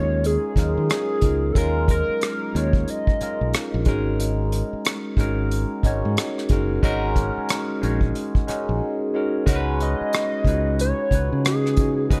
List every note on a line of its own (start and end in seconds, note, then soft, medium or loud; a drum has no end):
0.00 0.36 D#2 medium
0.00 0.63 G#3 loud
0.00 0.57 C#4 medium
0.00 0.58 D#4 medium
0.00 0.58 F4 medium
0.00 0.59 A#4 loud
0.00 0.27 C#5 loud
0.00 0.45 C#5 medium
0.24 0.91 G#4 medium
0.24 closed hi-hat medium
0.56 0.74 D#2 medium
0.56 0.64 F#3 soft
0.56 1.10 C#4 medium
0.56 1.11 D#4 medium
0.56 1.11 F4 medium
0.56 1.11 A#4 medium
0.56 kick medium
0.56 cross-stick soft
0.56 closed hi-hat medium
0.63 1.13 G#3 medium
0.77 0.88 D#3 medium
0.90 1.54 G#4 medium
0.90 cross-stick medium
0.90 closed hi-hat medium
1.21 1.51 C#2 medium
1.21 1.49 G#3 medium
1.21 1.49 C#4 medium
1.21 1.50 D#4 medium
1.21 1.50 F4 medium
1.21 1.50 A#4 medium
1.21 kick medium
1.21 closed hi-hat medium
1.52 2.02 D#2 medium
1.52 2.33 G#3 medium
1.52 2.33 C#4 medium
1.52 1.59 A4 medium
1.52 kick loud
1.52 closed hi-hat medium
1.57 2.34 D#4 medium
1.57 2.34 F4 medium
1.57 1.90 A#4 medium
1.57 2.34 A#4 loud
1.88 2.58 A#4 loud
1.88 kick medium
1.88 closed hi-hat medium
2.09 muted fingered electric bass stroke soft
2.21 cross-stick medium
2.21 closed hi-hat medium
2.54 2.83 D#2 medium
2.54 3.08 G#3 medium
2.54 3.08 C#4 medium
2.54 3.08 D#4 medium
2.54 3.09 F4 medium
2.54 3.09 A#4 medium
2.54 2.91 C#5 medium
2.54 closed hi-hat medium
2.73 kick medium
2.88 3.87 D#5 medium
2.88 closed hi-hat medium
3.07 kick medium
3.20 3.74 G#3 medium
3.20 3.74 C#4 medium
3.20 3.75 D#4 medium
3.20 3.75 F4 medium
3.20 3.75 A#4 medium
3.20 muted fingered electric bass stroke soft
3.20 closed hi-hat medium
3.41 3.52 B1 medium
3.54 cross-stick medium
3.54 closed hi-hat medium
3.74 3.85 A#1 medium
3.85 4.61 G#1 medium
3.85 4.93 G#3 medium
3.85 4.93 C#4 medium
3.85 4.94 D#4 medium
3.85 4.94 F#4 medium
3.85 4.94 A#4 medium
3.85 kick medium
3.85 closed hi-hat medium
4.20 closed hi-hat medium
4.52 closed hi-hat medium
4.73 muted fingered electric bass stroke soft
4.85 cross-stick medium
4.85 closed hi-hat medium
5.17 5.64 G#1 medium
5.17 5.72 G#3 medium
5.17 5.72 C#4 medium
5.17 5.72 D#4 medium
5.17 5.73 F#4 medium
5.17 5.73 A#4 medium
5.17 kick medium
5.17 closed hi-hat medium
5.51 closed hi-hat medium
5.83 6.01 G#1 medium
5.83 6.38 G#3 medium
5.83 6.38 C#4 medium
5.83 6.38 D#4 medium
5.83 6.39 F#4 medium
5.83 6.39 C#5 medium
5.83 kick medium
5.83 closed hi-hat medium
6.05 6.16 G#2 medium
6.17 cross-stick medium
6.17 closed hi-hat medium
6.38 cross-stick soft
6.49 6.79 F#1 medium
6.49 6.77 G#3 medium
6.49 6.77 C#4 medium
6.49 6.77 D#4 medium
6.49 6.78 F#4 medium
6.49 6.78 A#4 medium
6.49 kick medium
6.49 closed hi-hat medium
6.83 7.29 G#1 medium
6.83 7.60 G#3 loud
6.83 7.61 C#4 loud
6.83 7.61 D#4 loud
6.83 7.61 F#4 loud
6.83 7.62 A#4 loud
6.83 kick loud
6.83 closed hi-hat medium
7.16 kick medium
7.16 closed hi-hat medium
7.37 muted fingered electric bass stroke soft
7.49 cross-stick loud
7.49 closed hi-hat medium
7.82 8.11 A#1 medium
7.82 8.35 G#3 medium
7.82 8.36 C#4 medium
7.82 8.36 D#4 medium
7.82 8.36 F#4 medium
7.82 8.37 C#5 medium
7.82 closed hi-hat medium
8.01 kick medium
8.15 closed hi-hat medium
8.35 kick medium
8.47 9.01 G#3 medium
8.47 9.01 C#4 medium
8.47 9.02 D#4 medium
8.47 9.02 F#4 medium
8.47 9.02 G#4 medium
8.47 muted fingered electric bass stroke soft
8.47 cross-stick soft
8.47 closed hi-hat medium
8.69 8.80 A#1 medium
9.14 9.40 G#3 medium
9.14 9.41 C#4 medium
9.14 9.41 D#4 medium
9.14 9.41 F#4 medium
9.14 9.42 A#4 medium
9.46 9.93 C#2 medium
9.46 10.24 G#3 loud
9.46 10.24 C#4 medium
9.46 10.25 D#4 medium
9.46 10.25 F#4 loud
9.46 9.56 A#4 medium
9.46 kick loud
9.46 closed hi-hat medium
9.55 10.29 B4 loud
9.80 10.76 D#5 medium
9.80 closed hi-hat medium
10.01 muted fingered electric bass stroke soft
10.13 cross-stick medium
10.13 closed hi-hat medium
10.45 10.91 C#2 medium
10.45 10.99 G#3 medium
10.45 11.00 C#4 medium
10.45 11.00 D#4 medium
10.45 10.54 F4 soft
10.45 kick medium
10.45 closed hi-hat medium
10.49 11.01 B4 medium
10.54 11.03 F#4 medium
10.79 11.42 C#5 medium
10.79 closed hi-hat medium
11.11 11.29 C#2 medium
11.11 11.65 G#3 medium
11.11 11.65 C#4 medium
11.11 11.66 D#4 medium
11.11 11.20 F4 soft
11.11 11.66 B4 medium
11.11 kick medium
11.11 closed hi-hat medium
11.20 11.69 F#4 medium
11.32 12.07 C#3 medium
11.45 12.08 G#4 medium
11.45 cross-stick loud
11.45 closed hi-hat medium
11.66 cross-stick soft
11.77 12.05 G#3 medium
11.77 12.05 C#4 medium
11.77 12.05 D#4 medium
11.77 12.05 F#4 medium
11.77 kick medium
11.77 closed hi-hat medium
11.81 12.06 C#5 medium
12.10 12.20 C#2 medium
12.10 12.20 G#3 medium
12.10 12.20 C#4 medium
12.10 12.20 D#4 medium
12.10 12.20 F#4 medium
12.10 12.20 G#4 loud
12.10 12.20 B4 medium
12.10 kick loud
12.10 closed hi-hat medium